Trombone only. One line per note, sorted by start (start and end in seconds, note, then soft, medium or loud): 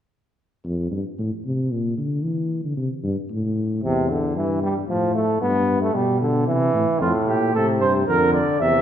3.84 4.12 C3 medium
4.10 4.36 D3 medium
4.36 4.62 E3 medium
4.63 4.75 G3 medium
4.89 5.14 F3 medium
5.15 5.41 A3 medium
5.41 5.80 B3 medium
5.81 5.96 A3 medium
5.94 6.20 G3 medium
6.21 6.47 D3 medium
6.47 7.02 E3 medium
7.00 7.54 A2 medium
7.54 8.06 C3 medium
8.08 8.62 D3 medium
8.60 8.82 C3 medium